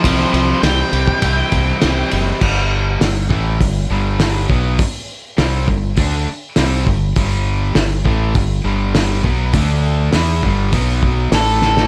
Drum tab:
CC |----------------|x---------------|----------------|----------------|
RD |x-x-x-x-x-x-x-x-|----------------|----------------|----------------|
HH |----------------|----o---o---o---|o---o---o---o---|o---o---o---o---|
SD |-o--o-------o---|----o-------o---|----o-------o---|----o-------o---|
BD |o------oo-o-----|o-----o-o-----o-|o-----o-o-----o-|o-----o-o-----o-|

CC |----------------|
RD |----------------|
HH |o---o---o---o---|
SD |----o-------o-oo|
BD |o-----o-o-o-----|